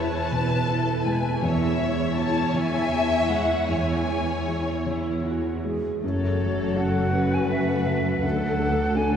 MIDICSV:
0, 0, Header, 1, 9, 480
1, 0, Start_track
1, 0, Key_signature, 3, "minor"
1, 0, Tempo, 743494
1, 919, Time_signature, 6, 3, 24, 8
1, 1880, Tempo, 779221
1, 3800, Tempo, 733496
1, 5853, End_track
2, 0, Start_track
2, 0, Title_t, "Violin section"
2, 0, Program_c, 0, 48
2, 0, Note_on_c, 0, 81, 76
2, 676, Note_off_c, 0, 81, 0
2, 679, Note_on_c, 0, 80, 64
2, 917, Note_on_c, 0, 76, 77
2, 919, Note_off_c, 0, 80, 0
2, 1397, Note_on_c, 0, 81, 81
2, 1398, Note_off_c, 0, 76, 0
2, 1639, Note_off_c, 0, 81, 0
2, 1642, Note_on_c, 0, 80, 71
2, 2112, Note_on_c, 0, 78, 62
2, 2116, Note_off_c, 0, 80, 0
2, 2348, Note_on_c, 0, 80, 62
2, 2353, Note_off_c, 0, 78, 0
2, 3074, Note_off_c, 0, 80, 0
2, 3805, Note_on_c, 0, 69, 51
2, 4501, Note_off_c, 0, 69, 0
2, 4536, Note_on_c, 0, 69, 48
2, 5236, Note_off_c, 0, 69, 0
2, 5243, Note_on_c, 0, 69, 51
2, 5853, Note_off_c, 0, 69, 0
2, 5853, End_track
3, 0, Start_track
3, 0, Title_t, "Flute"
3, 0, Program_c, 1, 73
3, 3800, Note_on_c, 1, 73, 63
3, 4284, Note_on_c, 1, 78, 64
3, 4294, Note_off_c, 1, 73, 0
3, 4659, Note_on_c, 1, 80, 63
3, 4669, Note_off_c, 1, 78, 0
3, 4762, Note_off_c, 1, 80, 0
3, 4766, Note_on_c, 1, 76, 59
3, 4885, Note_on_c, 1, 78, 54
3, 4895, Note_off_c, 1, 76, 0
3, 4999, Note_on_c, 1, 76, 58
3, 5009, Note_off_c, 1, 78, 0
3, 5237, Note_on_c, 1, 78, 72
3, 5247, Note_off_c, 1, 76, 0
3, 5719, Note_on_c, 1, 80, 68
3, 5729, Note_off_c, 1, 78, 0
3, 5853, Note_off_c, 1, 80, 0
3, 5853, End_track
4, 0, Start_track
4, 0, Title_t, "Violin section"
4, 0, Program_c, 2, 48
4, 0, Note_on_c, 2, 73, 50
4, 198, Note_off_c, 2, 73, 0
4, 204, Note_on_c, 2, 71, 60
4, 442, Note_off_c, 2, 71, 0
4, 443, Note_on_c, 2, 69, 51
4, 681, Note_off_c, 2, 69, 0
4, 682, Note_on_c, 2, 71, 52
4, 921, Note_off_c, 2, 71, 0
4, 921, Note_on_c, 2, 73, 61
4, 1626, Note_off_c, 2, 73, 0
4, 1647, Note_on_c, 2, 76, 82
4, 2356, Note_on_c, 2, 73, 53
4, 2358, Note_off_c, 2, 76, 0
4, 3441, Note_off_c, 2, 73, 0
4, 3809, Note_on_c, 2, 69, 51
4, 4503, Note_off_c, 2, 69, 0
4, 4530, Note_on_c, 2, 71, 59
4, 5247, Note_off_c, 2, 71, 0
4, 5247, Note_on_c, 2, 69, 54
4, 5853, Note_off_c, 2, 69, 0
4, 5853, End_track
5, 0, Start_track
5, 0, Title_t, "Viola section"
5, 0, Program_c, 3, 48
5, 0, Note_on_c, 3, 64, 44
5, 0, Note_on_c, 3, 71, 44
5, 894, Note_off_c, 3, 64, 0
5, 895, Note_off_c, 3, 71, 0
5, 921, Note_on_c, 3, 64, 56
5, 923, Note_on_c, 3, 73, 56
5, 3006, Note_off_c, 3, 64, 0
5, 3007, Note_off_c, 3, 73, 0
5, 3079, Note_on_c, 3, 64, 40
5, 3303, Note_off_c, 3, 64, 0
5, 3321, Note_on_c, 3, 66, 41
5, 3563, Note_off_c, 3, 66, 0
5, 3568, Note_on_c, 3, 68, 40
5, 3803, Note_off_c, 3, 68, 0
5, 3807, Note_on_c, 3, 57, 46
5, 3807, Note_on_c, 3, 66, 47
5, 5222, Note_off_c, 3, 57, 0
5, 5222, Note_off_c, 3, 66, 0
5, 5245, Note_on_c, 3, 69, 48
5, 5247, Note_on_c, 3, 54, 51
5, 5853, Note_off_c, 3, 54, 0
5, 5853, Note_off_c, 3, 69, 0
5, 5853, End_track
6, 0, Start_track
6, 0, Title_t, "Harp"
6, 0, Program_c, 4, 46
6, 0, Note_on_c, 4, 40, 46
6, 0, Note_on_c, 4, 47, 34
6, 0, Note_on_c, 4, 59, 33
6, 0, Note_on_c, 4, 64, 38
6, 0, Note_on_c, 4, 71, 38
6, 428, Note_off_c, 4, 64, 0
6, 436, Note_on_c, 4, 64, 48
6, 670, Note_off_c, 4, 47, 0
6, 678, Note_on_c, 4, 47, 43
6, 765, Note_off_c, 4, 59, 0
6, 906, Note_off_c, 4, 40, 0
6, 914, Note_on_c, 4, 40, 56
6, 938, Note_off_c, 4, 47, 0
6, 938, Note_off_c, 4, 71, 0
6, 1155, Note_on_c, 4, 56, 46
6, 1399, Note_on_c, 4, 73, 48
6, 1639, Note_on_c, 4, 68, 50
6, 1872, Note_off_c, 4, 64, 0
6, 2115, Note_on_c, 4, 52, 35
6, 2350, Note_off_c, 4, 40, 0
6, 2357, Note_on_c, 4, 40, 44
6, 2593, Note_off_c, 4, 56, 0
6, 2600, Note_on_c, 4, 56, 34
6, 2834, Note_off_c, 4, 73, 0
6, 2841, Note_on_c, 4, 73, 31
6, 3076, Note_off_c, 4, 68, 0
6, 3083, Note_on_c, 4, 68, 33
6, 3321, Note_on_c, 4, 64, 31
6, 3554, Note_off_c, 4, 52, 0
6, 3562, Note_on_c, 4, 52, 27
6, 3799, Note_on_c, 4, 42, 47
6, 3819, Note_off_c, 4, 52, 0
6, 3820, Note_off_c, 4, 56, 0
6, 3820, Note_off_c, 4, 64, 0
6, 3821, Note_off_c, 4, 40, 0
6, 3822, Note_off_c, 4, 68, 0
6, 4041, Note_on_c, 4, 54, 35
6, 4286, Note_on_c, 4, 69, 36
6, 4524, Note_on_c, 4, 66, 38
6, 4760, Note_on_c, 4, 61, 41
6, 5002, Note_on_c, 4, 49, 38
6, 5245, Note_on_c, 4, 50, 47
6, 5261, Note_off_c, 4, 61, 0
6, 5262, Note_off_c, 4, 49, 0
6, 5263, Note_off_c, 4, 42, 0
6, 5265, Note_off_c, 4, 73, 0
6, 5482, Note_on_c, 4, 62, 42
6, 5709, Note_off_c, 4, 66, 0
6, 5717, Note_on_c, 4, 66, 40
6, 5853, Note_off_c, 4, 50, 0
6, 5853, Note_off_c, 4, 54, 0
6, 5853, Note_off_c, 4, 62, 0
6, 5853, Note_off_c, 4, 66, 0
6, 5853, Note_off_c, 4, 69, 0
6, 5853, End_track
7, 0, Start_track
7, 0, Title_t, "Felt piano"
7, 0, Program_c, 5, 0
7, 0, Control_c, 5, 64, 127
7, 0, Note_on_c, 5, 40, 48
7, 0, Note_on_c, 5, 56, 32
7, 0, Note_on_c, 5, 64, 42
7, 0, Note_on_c, 5, 71, 39
7, 105, Note_off_c, 5, 71, 0
7, 203, Note_on_c, 5, 47, 36
7, 343, Note_off_c, 5, 64, 0
7, 440, Note_on_c, 5, 64, 39
7, 585, Note_off_c, 5, 47, 0
7, 685, Note_off_c, 5, 56, 0
7, 685, Note_on_c, 5, 56, 42
7, 824, Note_off_c, 5, 64, 0
7, 891, Note_off_c, 5, 40, 0
7, 918, Note_on_c, 5, 40, 59
7, 922, Note_off_c, 5, 56, 0
7, 930, Control_c, 5, 64, 0
7, 1026, Control_c, 5, 64, 127
7, 1164, Note_on_c, 5, 73, 42
7, 1410, Note_on_c, 5, 64, 49
7, 1546, Note_off_c, 5, 73, 0
7, 1640, Note_on_c, 5, 52, 36
7, 1789, Note_off_c, 5, 64, 0
7, 1889, Note_on_c, 5, 64, 41
7, 2021, Note_off_c, 5, 52, 0
7, 2113, Note_on_c, 5, 56, 39
7, 2262, Note_off_c, 5, 64, 0
7, 2329, Note_off_c, 5, 40, 0
7, 2360, Note_on_c, 5, 40, 40
7, 2367, Control_c, 5, 64, 0
7, 2477, Control_c, 5, 64, 127
7, 2500, Note_off_c, 5, 56, 0
7, 2599, Note_on_c, 5, 73, 30
7, 2844, Note_on_c, 5, 64, 32
7, 2983, Note_off_c, 5, 73, 0
7, 3082, Note_on_c, 5, 52, 25
7, 3225, Note_off_c, 5, 64, 0
7, 3325, Note_on_c, 5, 64, 29
7, 3467, Note_off_c, 5, 52, 0
7, 3565, Note_on_c, 5, 56, 28
7, 3709, Note_off_c, 5, 64, 0
7, 3778, Note_off_c, 5, 40, 0
7, 3801, Note_off_c, 5, 56, 0
7, 3803, Note_on_c, 5, 42, 43
7, 3811, Control_c, 5, 64, 0
7, 3923, Control_c, 5, 64, 127
7, 4048, Note_on_c, 5, 69, 38
7, 4286, Note_on_c, 5, 61, 40
7, 4431, Note_off_c, 5, 69, 0
7, 4517, Note_on_c, 5, 49, 31
7, 4669, Note_off_c, 5, 61, 0
7, 4759, Note_on_c, 5, 61, 37
7, 4904, Note_off_c, 5, 49, 0
7, 4999, Note_on_c, 5, 54, 36
7, 5146, Note_off_c, 5, 61, 0
7, 5220, Note_off_c, 5, 42, 0
7, 5237, Note_on_c, 5, 38, 46
7, 5242, Note_off_c, 5, 54, 0
7, 5257, Control_c, 5, 64, 0
7, 5369, Control_c, 5, 64, 127
7, 5479, Note_on_c, 5, 69, 42
7, 5712, Note_on_c, 5, 62, 46
7, 5853, Note_off_c, 5, 38, 0
7, 5853, Note_off_c, 5, 62, 0
7, 5853, Note_off_c, 5, 69, 0
7, 5853, End_track
8, 0, Start_track
8, 0, Title_t, "Cello section"
8, 0, Program_c, 6, 48
8, 0, Note_on_c, 6, 40, 43
8, 895, Note_off_c, 6, 40, 0
8, 925, Note_on_c, 6, 40, 62
8, 3651, Note_off_c, 6, 40, 0
8, 3803, Note_on_c, 6, 42, 49
8, 5220, Note_off_c, 6, 42, 0
8, 5247, Note_on_c, 6, 38, 56
8, 5853, Note_off_c, 6, 38, 0
8, 5853, End_track
9, 0, Start_track
9, 0, Title_t, "Double bass section"
9, 0, Program_c, 7, 48
9, 3801, Note_on_c, 7, 30, 49
9, 5219, Note_off_c, 7, 30, 0
9, 5246, Note_on_c, 7, 38, 56
9, 5853, Note_off_c, 7, 38, 0
9, 5853, End_track
0, 0, End_of_file